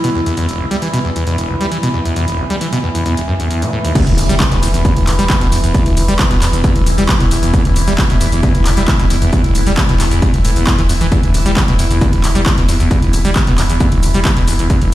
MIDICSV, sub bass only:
0, 0, Header, 1, 2, 480
1, 0, Start_track
1, 0, Tempo, 447761
1, 399, Time_signature, 4, 2, 24, 8
1, 16016, End_track
2, 0, Start_track
2, 0, Title_t, "Sub bass"
2, 0, Program_c, 0, 38
2, 4362, Note_on_c, 0, 28, 74
2, 4472, Note_off_c, 0, 28, 0
2, 4479, Note_on_c, 0, 28, 96
2, 4596, Note_off_c, 0, 28, 0
2, 4602, Note_on_c, 0, 28, 84
2, 4716, Note_off_c, 0, 28, 0
2, 4842, Note_on_c, 0, 28, 79
2, 4952, Note_off_c, 0, 28, 0
2, 4958, Note_on_c, 0, 28, 102
2, 5076, Note_off_c, 0, 28, 0
2, 5082, Note_on_c, 0, 28, 85
2, 5196, Note_off_c, 0, 28, 0
2, 5322, Note_on_c, 0, 28, 78
2, 5432, Note_off_c, 0, 28, 0
2, 5439, Note_on_c, 0, 28, 102
2, 5556, Note_off_c, 0, 28, 0
2, 5562, Note_on_c, 0, 28, 82
2, 5676, Note_off_c, 0, 28, 0
2, 5802, Note_on_c, 0, 28, 75
2, 5912, Note_off_c, 0, 28, 0
2, 5918, Note_on_c, 0, 28, 100
2, 6035, Note_off_c, 0, 28, 0
2, 6042, Note_on_c, 0, 28, 84
2, 6156, Note_off_c, 0, 28, 0
2, 6282, Note_on_c, 0, 28, 81
2, 6391, Note_off_c, 0, 28, 0
2, 6397, Note_on_c, 0, 28, 103
2, 6515, Note_off_c, 0, 28, 0
2, 6521, Note_on_c, 0, 28, 88
2, 6636, Note_off_c, 0, 28, 0
2, 6761, Note_on_c, 0, 28, 81
2, 6871, Note_off_c, 0, 28, 0
2, 6878, Note_on_c, 0, 28, 101
2, 6995, Note_off_c, 0, 28, 0
2, 7002, Note_on_c, 0, 28, 83
2, 7116, Note_off_c, 0, 28, 0
2, 7242, Note_on_c, 0, 28, 80
2, 7352, Note_off_c, 0, 28, 0
2, 7359, Note_on_c, 0, 28, 100
2, 7476, Note_off_c, 0, 28, 0
2, 7483, Note_on_c, 0, 28, 83
2, 7596, Note_off_c, 0, 28, 0
2, 7723, Note_on_c, 0, 28, 75
2, 7833, Note_off_c, 0, 28, 0
2, 7839, Note_on_c, 0, 28, 94
2, 7957, Note_off_c, 0, 28, 0
2, 7963, Note_on_c, 0, 28, 86
2, 8077, Note_off_c, 0, 28, 0
2, 8203, Note_on_c, 0, 28, 76
2, 8313, Note_off_c, 0, 28, 0
2, 8319, Note_on_c, 0, 28, 98
2, 8436, Note_off_c, 0, 28, 0
2, 8443, Note_on_c, 0, 28, 84
2, 8556, Note_off_c, 0, 28, 0
2, 8683, Note_on_c, 0, 28, 77
2, 8793, Note_off_c, 0, 28, 0
2, 8799, Note_on_c, 0, 28, 103
2, 8916, Note_off_c, 0, 28, 0
2, 8922, Note_on_c, 0, 28, 81
2, 9036, Note_off_c, 0, 28, 0
2, 9162, Note_on_c, 0, 28, 81
2, 9271, Note_off_c, 0, 28, 0
2, 9277, Note_on_c, 0, 28, 101
2, 9395, Note_off_c, 0, 28, 0
2, 9401, Note_on_c, 0, 28, 82
2, 9516, Note_off_c, 0, 28, 0
2, 9642, Note_on_c, 0, 28, 78
2, 9752, Note_off_c, 0, 28, 0
2, 9758, Note_on_c, 0, 28, 99
2, 9876, Note_off_c, 0, 28, 0
2, 9882, Note_on_c, 0, 28, 82
2, 9996, Note_off_c, 0, 28, 0
2, 10122, Note_on_c, 0, 28, 75
2, 10232, Note_off_c, 0, 28, 0
2, 10239, Note_on_c, 0, 28, 98
2, 10356, Note_off_c, 0, 28, 0
2, 10362, Note_on_c, 0, 28, 86
2, 10476, Note_off_c, 0, 28, 0
2, 10602, Note_on_c, 0, 28, 76
2, 10712, Note_off_c, 0, 28, 0
2, 10718, Note_on_c, 0, 28, 104
2, 10836, Note_off_c, 0, 28, 0
2, 10842, Note_on_c, 0, 28, 81
2, 10956, Note_off_c, 0, 28, 0
2, 11082, Note_on_c, 0, 28, 79
2, 11191, Note_off_c, 0, 28, 0
2, 11197, Note_on_c, 0, 28, 100
2, 11315, Note_off_c, 0, 28, 0
2, 11321, Note_on_c, 0, 28, 82
2, 11436, Note_off_c, 0, 28, 0
2, 11562, Note_on_c, 0, 28, 78
2, 11672, Note_off_c, 0, 28, 0
2, 11679, Note_on_c, 0, 28, 99
2, 11796, Note_off_c, 0, 28, 0
2, 11802, Note_on_c, 0, 28, 81
2, 11916, Note_off_c, 0, 28, 0
2, 12043, Note_on_c, 0, 28, 77
2, 12153, Note_off_c, 0, 28, 0
2, 12159, Note_on_c, 0, 28, 100
2, 12276, Note_off_c, 0, 28, 0
2, 12282, Note_on_c, 0, 28, 86
2, 12396, Note_off_c, 0, 28, 0
2, 12522, Note_on_c, 0, 28, 76
2, 12632, Note_off_c, 0, 28, 0
2, 12638, Note_on_c, 0, 28, 104
2, 12756, Note_off_c, 0, 28, 0
2, 12762, Note_on_c, 0, 28, 84
2, 12876, Note_off_c, 0, 28, 0
2, 13002, Note_on_c, 0, 28, 76
2, 13113, Note_off_c, 0, 28, 0
2, 13119, Note_on_c, 0, 28, 104
2, 13237, Note_off_c, 0, 28, 0
2, 13243, Note_on_c, 0, 28, 84
2, 13357, Note_off_c, 0, 28, 0
2, 13483, Note_on_c, 0, 28, 80
2, 13592, Note_off_c, 0, 28, 0
2, 13598, Note_on_c, 0, 28, 97
2, 13715, Note_off_c, 0, 28, 0
2, 13722, Note_on_c, 0, 28, 85
2, 13836, Note_off_c, 0, 28, 0
2, 13962, Note_on_c, 0, 28, 80
2, 14073, Note_off_c, 0, 28, 0
2, 14079, Note_on_c, 0, 28, 99
2, 14197, Note_off_c, 0, 28, 0
2, 14203, Note_on_c, 0, 28, 84
2, 14317, Note_off_c, 0, 28, 0
2, 14443, Note_on_c, 0, 28, 78
2, 14552, Note_off_c, 0, 28, 0
2, 14558, Note_on_c, 0, 28, 101
2, 14675, Note_off_c, 0, 28, 0
2, 14682, Note_on_c, 0, 28, 84
2, 14796, Note_off_c, 0, 28, 0
2, 14922, Note_on_c, 0, 28, 78
2, 15032, Note_off_c, 0, 28, 0
2, 15038, Note_on_c, 0, 28, 100
2, 15156, Note_off_c, 0, 28, 0
2, 15162, Note_on_c, 0, 28, 82
2, 15276, Note_off_c, 0, 28, 0
2, 15402, Note_on_c, 0, 28, 78
2, 15512, Note_off_c, 0, 28, 0
2, 15518, Note_on_c, 0, 28, 99
2, 15636, Note_off_c, 0, 28, 0
2, 15643, Note_on_c, 0, 28, 81
2, 15756, Note_off_c, 0, 28, 0
2, 15882, Note_on_c, 0, 28, 77
2, 15991, Note_off_c, 0, 28, 0
2, 16016, End_track
0, 0, End_of_file